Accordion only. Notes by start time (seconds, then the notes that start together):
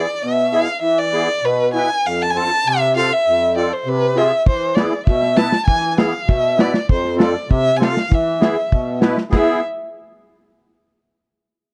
0.22 B2
0.52 B3 E4 G#4
0.82 E3
1.13 B3 E4 G#4
1.43 B2
1.74 B3 E4 B4
2.05 F2
2.34 C4 F4 A4
2.66 C3
2.96 C4 F4 A4
3.27 F2
3.55 C4 F4 A4
3.86 C3
4.15 C4 F4 G#4
4.47 E3
4.78 B3 E4 G#4
5.08 B2
5.36 B3 E4 B4
5.66 E3
5.97 B3 E4 G#4
6.27 B2
6.57 B3 E4 B4
6.88 F2
7.16 C4 F4 A4
7.49 C3
7.79 C4 F4 A4
8.10 E3
8.40 B3 E4 G#4
8.70 B2
9.00 B3 E4 B4
9.31 B3 E4 G#4